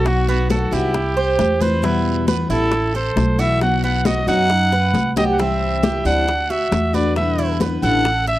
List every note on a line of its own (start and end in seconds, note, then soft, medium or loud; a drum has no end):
0.00 0.66 B1 medium
0.00 0.27 F#4 medium
0.05 0.49 B2 medium
0.05 0.48 F#3 medium
0.05 0.49 B3 medium
0.05 0.49 D#4 medium
0.05 0.50 F#4 medium
0.05 0.29 F#4 medium
0.05 high bongo medium
0.05 high conga soft
0.05 long guiro medium
0.28 0.50 B3 medium
0.28 0.49 F#4 medium
0.28 high conga soft
0.49 0.71 F#3 soft
0.49 0.71 B3 soft
0.49 0.71 D#4 soft
0.49 0.72 F#4 medium
0.49 0.70 F#4 soft
0.49 0.75 A4 medium
0.49 high bongo medium
0.49 high conga medium
0.49 short guiro medium
0.71 1.35 C2 medium
0.71 0.94 F#3 medium
0.71 0.94 B3 medium
0.71 0.93 D#4 medium
0.71 1.16 E4 medium
0.71 0.93 F#4 medium
0.71 1.63 G4 medium
0.71 high bongo soft
0.71 high conga soft
0.71 short guiro medium
0.94 muted steel-string acoustic guitar stroke medium
0.94 high bongo medium
0.94 high conga soft
0.94 long guiro medium
1.17 1.60 C5 medium
1.17 high bongo soft
1.17 high conga soft
1.38 2.44 E2 medium
1.38 high bongo medium
1.38 low bongo medium
1.38 high conga medium
1.38 short guiro medium
1.60 1.82 E3 soft
1.60 1.82 G3 medium
1.60 1.82 C4 medium
1.60 1.82 E4 medium
1.60 1.83 B4 medium
1.60 1.87 C5 medium
1.60 high bongo soft
1.60 high conga medium
1.60 short guiro medium
1.82 2.26 B2 medium
1.82 2.26 E3 medium
1.82 2.27 G3 medium
1.82 2.27 B3 medium
1.82 2.27 E4 medium
1.82 2.24 B4 medium
1.82 high bongo medium
1.82 long guiro medium
2.06 high conga soft
2.27 2.49 E3 soft
2.27 2.49 G3 medium
2.27 2.49 B3 soft
2.27 2.48 E4 medium
2.27 2.49 B4 medium
2.27 high bongo medium
2.27 high conga medium
2.27 short guiro medium
2.49 3.12 A1 medium
2.49 2.71 E3 soft
2.49 2.72 G3 medium
2.49 2.71 B3 medium
2.49 2.71 E4 medium
2.49 2.93 E4 medium
2.49 2.92 A4 loud
2.49 short guiro medium
2.72 muted steel-string acoustic guitar stroke medium
2.72 high bongo medium
2.72 high conga soft
2.72 long guiro medium
2.95 3.38 A4 medium
2.95 3.41 C5 medium
2.95 high conga soft
3.16 4.21 B1 medium
3.16 high bongo medium
3.16 low bongo medium
3.16 high conga medium
3.16 short guiro medium
3.38 3.61 E3 soft
3.38 3.61 A3 medium
3.38 3.60 B3 medium
3.38 3.60 E4 medium
3.38 3.82 F#4 medium
3.38 3.62 E5 loud
3.38 short guiro medium
3.61 4.05 B2 medium
3.61 4.04 F#3 medium
3.61 4.05 B3 medium
3.61 4.05 D#4 medium
3.61 4.05 F#4 medium
3.61 3.82 F#5 medium
3.61 high bongo medium
3.61 high conga soft
3.61 long guiro medium
3.83 4.05 B3 medium
3.83 4.07 F#5 medium
3.83 high conga soft
4.05 4.27 F#3 soft
4.05 4.27 B3 soft
4.05 4.27 D#4 soft
4.05 4.27 F#4 medium
4.05 4.26 F#4 soft
4.05 4.28 D#5 medium
4.05 high bongo medium
4.05 high conga medium
4.05 short guiro medium
4.27 4.90 F#2 medium
4.27 4.48 F#3 medium
4.27 4.49 B3 medium
4.27 4.71 D#4 medium
4.27 4.49 D#4 medium
4.27 4.49 F#4 medium
4.27 5.13 F#5 loud
4.27 high bongo soft
4.27 high conga soft
4.27 short guiro medium
4.50 muted steel-string acoustic guitar stroke medium
4.50 high bongo medium
4.50 high conga soft
4.50 long guiro medium
4.72 5.15 B4 medium
4.72 high bongo medium
4.72 high conga soft
4.94 5.99 C2 medium
4.94 low bongo medium
4.94 high conga medium
4.94 short guiro medium
5.16 5.38 F#3 soft
5.16 5.38 B3 soft
5.16 5.38 D#4 medium
5.16 5.38 F#4 soft
5.16 5.38 G4 medium
5.16 5.24 D#5 loud
5.16 low bongo medium
5.16 high conga medium
5.16 short guiro medium
5.33 5.41 F#5 medium
5.38 5.82 C3 medium
5.38 5.82 E3 medium
5.38 5.83 G3 medium
5.38 5.82 C4 medium
5.38 5.83 C4 medium
5.38 5.83 E4 medium
5.38 6.06 E5 medium
5.38 high bongo medium
5.38 long guiro medium
5.61 high conga soft
5.83 6.04 E3 soft
5.83 6.05 G3 soft
5.83 6.04 C4 soft
5.83 6.04 E4 soft
5.83 6.05 G4 medium
5.83 high bongo medium
5.83 high conga medium
5.83 short guiro medium
6.05 6.68 D2 medium
6.05 6.27 E3 soft
6.05 6.27 G3 medium
6.05 6.27 C4 medium
6.05 6.48 D4 medium
6.05 6.26 E4 medium
6.05 6.52 F#5 loud
6.05 short guiro medium
6.28 muted steel-string acoustic guitar stroke medium
6.28 high bongo medium
6.28 high conga soft
6.28 long guiro medium
6.50 6.93 F#4 medium
6.50 6.96 E5 medium
6.50 high conga soft
6.72 7.77 E2 medium
6.72 high bongo medium
6.72 low bongo medium
6.72 high conga medium
6.72 short guiro medium
6.93 7.16 A3 soft
6.93 7.16 D4 medium
6.93 7.15 F#4 medium
6.93 7.37 B4 medium
6.93 7.16 D5 medium
6.93 high conga medium
6.93 short guiro medium
7.16 7.60 B2 medium
7.16 7.59 D3 medium
7.16 7.60 G3 medium
7.16 7.60 B3 medium
7.16 7.61 E4 medium
7.16 7.53 E5 medium
7.16 high bongo medium
7.16 high conga soft
7.16 long guiro medium
7.38 7.60 E4 medium
7.38 high conga soft
7.60 7.82 D3 soft
7.60 7.82 G3 medium
7.60 7.82 B3 medium
7.60 7.81 E4 medium
7.60 7.83 B4 medium
7.60 high bongo medium
7.60 high conga medium
7.60 short guiro medium
7.82 8.39 A1 medium
7.82 8.05 D3 medium
7.82 8.05 G3 medium
7.82 8.04 B3 medium
7.82 8.04 E4 medium
7.82 8.26 A4 medium
7.82 8.24 F#5 loud
7.82 high bongo soft
7.82 high conga soft
7.82 short guiro medium
8.05 muted steel-string acoustic guitar stroke medium
8.05 high bongo medium
8.05 high conga soft
8.05 long guiro medium
8.27 8.39 E5 medium
8.27 8.39 E5 loud
8.27 high bongo soft
8.27 high conga soft